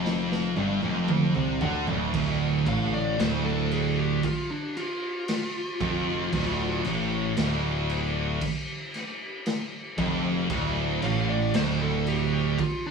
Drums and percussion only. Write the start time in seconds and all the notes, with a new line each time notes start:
0.06 snare
0.32 snare
0.56 high tom
0.82 high tom
1.08 mid tom
1.35 mid tom
1.61 floor tom
1.87 floor tom
2.14 kick, crash
2.66 kick, crash
3.19 snare, crash
3.71 crash
4.23 kick, crash
4.77 crash
5.28 snare, crash
5.81 kick, crash
6.33 kick, crash
6.85 crash
7.37 snare, crash
7.89 crash
8.41 kick, crash
8.94 snare, crash
9.46 snare, crash
9.98 kick, crash
10.50 kick, crash
11.02 crash
11.54 snare, crash
12.06 crash
12.59 kick, crash